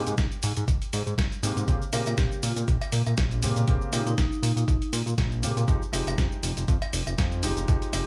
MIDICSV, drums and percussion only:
0, 0, Header, 1, 2, 480
1, 0, Start_track
1, 0, Tempo, 500000
1, 1616, Time_signature, 4, 2, 24, 8
1, 7743, End_track
2, 0, Start_track
2, 0, Title_t, "Drums"
2, 64, Note_on_c, 9, 42, 36
2, 64, Note_on_c, 9, 82, 34
2, 160, Note_off_c, 9, 42, 0
2, 160, Note_off_c, 9, 82, 0
2, 172, Note_on_c, 9, 36, 104
2, 172, Note_on_c, 9, 42, 83
2, 172, Note_on_c, 9, 82, 45
2, 174, Note_on_c, 9, 38, 117
2, 268, Note_off_c, 9, 36, 0
2, 268, Note_off_c, 9, 42, 0
2, 268, Note_off_c, 9, 82, 0
2, 270, Note_off_c, 9, 38, 0
2, 303, Note_on_c, 9, 42, 38
2, 303, Note_on_c, 9, 82, 24
2, 399, Note_off_c, 9, 42, 0
2, 399, Note_off_c, 9, 82, 0
2, 410, Note_on_c, 9, 46, 92
2, 410, Note_on_c, 9, 82, 82
2, 506, Note_off_c, 9, 46, 0
2, 506, Note_off_c, 9, 82, 0
2, 543, Note_on_c, 9, 42, 59
2, 543, Note_on_c, 9, 82, 36
2, 639, Note_off_c, 9, 42, 0
2, 639, Note_off_c, 9, 82, 0
2, 652, Note_on_c, 9, 36, 113
2, 653, Note_on_c, 9, 42, 88
2, 653, Note_on_c, 9, 82, 49
2, 748, Note_off_c, 9, 36, 0
2, 749, Note_off_c, 9, 42, 0
2, 749, Note_off_c, 9, 82, 0
2, 785, Note_on_c, 9, 42, 57
2, 785, Note_on_c, 9, 82, 23
2, 881, Note_off_c, 9, 42, 0
2, 881, Note_off_c, 9, 82, 0
2, 894, Note_on_c, 9, 46, 102
2, 894, Note_on_c, 9, 82, 83
2, 990, Note_off_c, 9, 46, 0
2, 990, Note_off_c, 9, 82, 0
2, 1027, Note_on_c, 9, 42, 38
2, 1028, Note_on_c, 9, 82, 33
2, 1123, Note_off_c, 9, 42, 0
2, 1124, Note_off_c, 9, 82, 0
2, 1132, Note_on_c, 9, 36, 102
2, 1137, Note_on_c, 9, 42, 88
2, 1137, Note_on_c, 9, 82, 48
2, 1139, Note_on_c, 9, 38, 127
2, 1228, Note_off_c, 9, 36, 0
2, 1233, Note_off_c, 9, 42, 0
2, 1233, Note_off_c, 9, 82, 0
2, 1235, Note_off_c, 9, 38, 0
2, 1268, Note_on_c, 9, 42, 40
2, 1269, Note_on_c, 9, 82, 23
2, 1364, Note_off_c, 9, 42, 0
2, 1365, Note_off_c, 9, 82, 0
2, 1376, Note_on_c, 9, 46, 86
2, 1376, Note_on_c, 9, 82, 79
2, 1472, Note_off_c, 9, 46, 0
2, 1472, Note_off_c, 9, 82, 0
2, 1507, Note_on_c, 9, 42, 37
2, 1507, Note_on_c, 9, 82, 35
2, 1603, Note_off_c, 9, 42, 0
2, 1603, Note_off_c, 9, 82, 0
2, 1612, Note_on_c, 9, 36, 120
2, 1612, Note_on_c, 9, 42, 84
2, 1612, Note_on_c, 9, 82, 44
2, 1708, Note_off_c, 9, 36, 0
2, 1708, Note_off_c, 9, 42, 0
2, 1708, Note_off_c, 9, 82, 0
2, 1746, Note_on_c, 9, 82, 25
2, 1842, Note_off_c, 9, 82, 0
2, 1850, Note_on_c, 9, 46, 114
2, 1851, Note_on_c, 9, 82, 81
2, 1854, Note_on_c, 9, 56, 74
2, 1946, Note_off_c, 9, 46, 0
2, 1947, Note_off_c, 9, 82, 0
2, 1950, Note_off_c, 9, 56, 0
2, 1980, Note_on_c, 9, 42, 39
2, 1980, Note_on_c, 9, 82, 32
2, 1989, Note_on_c, 9, 56, 85
2, 2076, Note_off_c, 9, 42, 0
2, 2076, Note_off_c, 9, 82, 0
2, 2085, Note_off_c, 9, 56, 0
2, 2090, Note_on_c, 9, 42, 79
2, 2090, Note_on_c, 9, 82, 43
2, 2091, Note_on_c, 9, 38, 120
2, 2092, Note_on_c, 9, 36, 111
2, 2186, Note_off_c, 9, 42, 0
2, 2186, Note_off_c, 9, 82, 0
2, 2187, Note_off_c, 9, 38, 0
2, 2188, Note_off_c, 9, 36, 0
2, 2225, Note_on_c, 9, 82, 22
2, 2321, Note_off_c, 9, 82, 0
2, 2333, Note_on_c, 9, 46, 93
2, 2333, Note_on_c, 9, 82, 79
2, 2429, Note_off_c, 9, 46, 0
2, 2429, Note_off_c, 9, 82, 0
2, 2463, Note_on_c, 9, 42, 57
2, 2463, Note_on_c, 9, 82, 35
2, 2559, Note_off_c, 9, 42, 0
2, 2559, Note_off_c, 9, 82, 0
2, 2572, Note_on_c, 9, 42, 84
2, 2572, Note_on_c, 9, 82, 45
2, 2573, Note_on_c, 9, 36, 117
2, 2668, Note_off_c, 9, 42, 0
2, 2668, Note_off_c, 9, 82, 0
2, 2669, Note_off_c, 9, 36, 0
2, 2702, Note_on_c, 9, 56, 91
2, 2703, Note_on_c, 9, 42, 55
2, 2703, Note_on_c, 9, 82, 23
2, 2798, Note_off_c, 9, 56, 0
2, 2799, Note_off_c, 9, 42, 0
2, 2799, Note_off_c, 9, 82, 0
2, 2807, Note_on_c, 9, 46, 103
2, 2807, Note_on_c, 9, 82, 77
2, 2903, Note_off_c, 9, 46, 0
2, 2903, Note_off_c, 9, 82, 0
2, 2942, Note_on_c, 9, 42, 37
2, 2942, Note_on_c, 9, 82, 33
2, 2944, Note_on_c, 9, 56, 69
2, 3038, Note_off_c, 9, 42, 0
2, 3038, Note_off_c, 9, 82, 0
2, 3040, Note_off_c, 9, 56, 0
2, 3048, Note_on_c, 9, 42, 84
2, 3048, Note_on_c, 9, 82, 48
2, 3050, Note_on_c, 9, 38, 127
2, 3052, Note_on_c, 9, 36, 102
2, 3144, Note_off_c, 9, 42, 0
2, 3144, Note_off_c, 9, 82, 0
2, 3146, Note_off_c, 9, 38, 0
2, 3148, Note_off_c, 9, 36, 0
2, 3181, Note_on_c, 9, 42, 40
2, 3181, Note_on_c, 9, 82, 22
2, 3277, Note_off_c, 9, 42, 0
2, 3277, Note_off_c, 9, 82, 0
2, 3288, Note_on_c, 9, 46, 95
2, 3288, Note_on_c, 9, 82, 79
2, 3384, Note_off_c, 9, 46, 0
2, 3384, Note_off_c, 9, 82, 0
2, 3420, Note_on_c, 9, 42, 38
2, 3420, Note_on_c, 9, 82, 31
2, 3516, Note_off_c, 9, 42, 0
2, 3516, Note_off_c, 9, 82, 0
2, 3529, Note_on_c, 9, 42, 79
2, 3529, Note_on_c, 9, 82, 45
2, 3532, Note_on_c, 9, 36, 123
2, 3625, Note_off_c, 9, 42, 0
2, 3625, Note_off_c, 9, 82, 0
2, 3628, Note_off_c, 9, 36, 0
2, 3662, Note_on_c, 9, 82, 23
2, 3758, Note_off_c, 9, 82, 0
2, 3770, Note_on_c, 9, 46, 114
2, 3770, Note_on_c, 9, 82, 77
2, 3774, Note_on_c, 9, 56, 66
2, 3866, Note_off_c, 9, 46, 0
2, 3866, Note_off_c, 9, 82, 0
2, 3870, Note_off_c, 9, 56, 0
2, 3904, Note_on_c, 9, 42, 35
2, 3904, Note_on_c, 9, 82, 31
2, 4000, Note_off_c, 9, 42, 0
2, 4000, Note_off_c, 9, 82, 0
2, 4012, Note_on_c, 9, 42, 80
2, 4012, Note_on_c, 9, 82, 43
2, 4013, Note_on_c, 9, 36, 116
2, 4014, Note_on_c, 9, 38, 122
2, 4108, Note_off_c, 9, 42, 0
2, 4108, Note_off_c, 9, 82, 0
2, 4109, Note_off_c, 9, 36, 0
2, 4110, Note_off_c, 9, 38, 0
2, 4148, Note_on_c, 9, 82, 22
2, 4244, Note_off_c, 9, 82, 0
2, 4255, Note_on_c, 9, 46, 100
2, 4255, Note_on_c, 9, 82, 79
2, 4351, Note_off_c, 9, 46, 0
2, 4351, Note_off_c, 9, 82, 0
2, 4388, Note_on_c, 9, 42, 55
2, 4388, Note_on_c, 9, 82, 33
2, 4484, Note_off_c, 9, 42, 0
2, 4484, Note_off_c, 9, 82, 0
2, 4492, Note_on_c, 9, 36, 123
2, 4495, Note_on_c, 9, 42, 81
2, 4496, Note_on_c, 9, 82, 43
2, 4588, Note_off_c, 9, 36, 0
2, 4591, Note_off_c, 9, 42, 0
2, 4592, Note_off_c, 9, 82, 0
2, 4626, Note_on_c, 9, 42, 54
2, 4626, Note_on_c, 9, 82, 22
2, 4722, Note_off_c, 9, 42, 0
2, 4722, Note_off_c, 9, 82, 0
2, 4733, Note_on_c, 9, 46, 109
2, 4733, Note_on_c, 9, 82, 80
2, 4829, Note_off_c, 9, 46, 0
2, 4829, Note_off_c, 9, 82, 0
2, 4867, Note_on_c, 9, 42, 37
2, 4867, Note_on_c, 9, 82, 32
2, 4963, Note_off_c, 9, 42, 0
2, 4963, Note_off_c, 9, 82, 0
2, 4973, Note_on_c, 9, 36, 107
2, 4973, Note_on_c, 9, 42, 85
2, 4973, Note_on_c, 9, 82, 44
2, 4975, Note_on_c, 9, 38, 127
2, 5069, Note_off_c, 9, 36, 0
2, 5069, Note_off_c, 9, 42, 0
2, 5069, Note_off_c, 9, 82, 0
2, 5071, Note_off_c, 9, 38, 0
2, 5107, Note_on_c, 9, 42, 39
2, 5107, Note_on_c, 9, 82, 21
2, 5203, Note_off_c, 9, 42, 0
2, 5203, Note_off_c, 9, 82, 0
2, 5214, Note_on_c, 9, 46, 95
2, 5214, Note_on_c, 9, 82, 77
2, 5310, Note_off_c, 9, 46, 0
2, 5310, Note_off_c, 9, 82, 0
2, 5348, Note_on_c, 9, 42, 38
2, 5348, Note_on_c, 9, 82, 31
2, 5444, Note_off_c, 9, 42, 0
2, 5444, Note_off_c, 9, 82, 0
2, 5453, Note_on_c, 9, 36, 127
2, 5455, Note_on_c, 9, 42, 81
2, 5455, Note_on_c, 9, 82, 44
2, 5549, Note_off_c, 9, 36, 0
2, 5551, Note_off_c, 9, 42, 0
2, 5551, Note_off_c, 9, 82, 0
2, 5590, Note_on_c, 9, 82, 23
2, 5686, Note_off_c, 9, 82, 0
2, 5692, Note_on_c, 9, 56, 71
2, 5697, Note_on_c, 9, 46, 113
2, 5697, Note_on_c, 9, 82, 77
2, 5788, Note_off_c, 9, 56, 0
2, 5793, Note_off_c, 9, 46, 0
2, 5793, Note_off_c, 9, 82, 0
2, 5829, Note_on_c, 9, 42, 34
2, 5829, Note_on_c, 9, 82, 33
2, 5836, Note_on_c, 9, 56, 96
2, 5925, Note_off_c, 9, 42, 0
2, 5925, Note_off_c, 9, 82, 0
2, 5932, Note_off_c, 9, 56, 0
2, 5934, Note_on_c, 9, 36, 118
2, 5934, Note_on_c, 9, 42, 74
2, 5934, Note_on_c, 9, 82, 43
2, 5936, Note_on_c, 9, 38, 117
2, 6030, Note_off_c, 9, 36, 0
2, 6030, Note_off_c, 9, 42, 0
2, 6030, Note_off_c, 9, 82, 0
2, 6032, Note_off_c, 9, 38, 0
2, 6067, Note_on_c, 9, 82, 22
2, 6163, Note_off_c, 9, 82, 0
2, 6175, Note_on_c, 9, 46, 95
2, 6175, Note_on_c, 9, 82, 75
2, 6271, Note_off_c, 9, 46, 0
2, 6271, Note_off_c, 9, 82, 0
2, 6308, Note_on_c, 9, 42, 54
2, 6308, Note_on_c, 9, 82, 33
2, 6404, Note_off_c, 9, 42, 0
2, 6404, Note_off_c, 9, 82, 0
2, 6415, Note_on_c, 9, 36, 125
2, 6415, Note_on_c, 9, 42, 78
2, 6415, Note_on_c, 9, 82, 44
2, 6511, Note_off_c, 9, 36, 0
2, 6511, Note_off_c, 9, 42, 0
2, 6511, Note_off_c, 9, 82, 0
2, 6546, Note_on_c, 9, 42, 53
2, 6546, Note_on_c, 9, 56, 96
2, 6546, Note_on_c, 9, 82, 21
2, 6642, Note_off_c, 9, 42, 0
2, 6642, Note_off_c, 9, 56, 0
2, 6642, Note_off_c, 9, 82, 0
2, 6655, Note_on_c, 9, 46, 109
2, 6655, Note_on_c, 9, 82, 77
2, 6751, Note_off_c, 9, 46, 0
2, 6751, Note_off_c, 9, 82, 0
2, 6787, Note_on_c, 9, 56, 77
2, 6788, Note_on_c, 9, 42, 34
2, 6788, Note_on_c, 9, 82, 32
2, 6883, Note_off_c, 9, 56, 0
2, 6884, Note_off_c, 9, 42, 0
2, 6884, Note_off_c, 9, 82, 0
2, 6896, Note_on_c, 9, 36, 110
2, 6896, Note_on_c, 9, 42, 81
2, 6897, Note_on_c, 9, 82, 45
2, 6898, Note_on_c, 9, 38, 127
2, 6992, Note_off_c, 9, 36, 0
2, 6992, Note_off_c, 9, 42, 0
2, 6993, Note_off_c, 9, 82, 0
2, 6994, Note_off_c, 9, 38, 0
2, 7027, Note_on_c, 9, 42, 35
2, 7027, Note_on_c, 9, 82, 21
2, 7123, Note_off_c, 9, 42, 0
2, 7123, Note_off_c, 9, 82, 0
2, 7132, Note_on_c, 9, 46, 98
2, 7132, Note_on_c, 9, 82, 72
2, 7228, Note_off_c, 9, 46, 0
2, 7228, Note_off_c, 9, 82, 0
2, 7267, Note_on_c, 9, 42, 36
2, 7268, Note_on_c, 9, 82, 32
2, 7363, Note_off_c, 9, 42, 0
2, 7364, Note_off_c, 9, 82, 0
2, 7375, Note_on_c, 9, 42, 78
2, 7375, Note_on_c, 9, 82, 44
2, 7377, Note_on_c, 9, 36, 126
2, 7471, Note_off_c, 9, 42, 0
2, 7471, Note_off_c, 9, 82, 0
2, 7473, Note_off_c, 9, 36, 0
2, 7507, Note_on_c, 9, 42, 38
2, 7508, Note_on_c, 9, 82, 23
2, 7603, Note_off_c, 9, 42, 0
2, 7604, Note_off_c, 9, 82, 0
2, 7613, Note_on_c, 9, 56, 74
2, 7615, Note_on_c, 9, 46, 114
2, 7615, Note_on_c, 9, 82, 80
2, 7709, Note_off_c, 9, 56, 0
2, 7711, Note_off_c, 9, 46, 0
2, 7711, Note_off_c, 9, 82, 0
2, 7743, End_track
0, 0, End_of_file